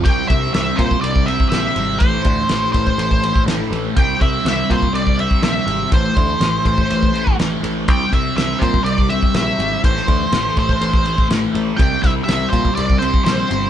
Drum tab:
RD |x-x-x-x-x-x-x-x-|x-x-x-x-x-x-x-x-|x-x-x-x-x-x-x-x-|x-x-x-x-x-x-x-x-|
SD |----o-------o---|----o-------o---|----o-------o---|----o-------o---|
BD |o-o---oo-o-o----|o-o---oo-o-o----|o-o---oo-o-o----|o-o---oo-o-o----|

RD |x-x-x-x-x-x-x-x-|x-x-x-x-x-x-x-x-|x-x-x-x-x-x-x-x-|
SD |----o-------o---|-o--o-------o---|--o-o-------o---|
BD |o-o---oo-o-o----|o-o---oo-o-o----|o-o---oo-o-o----|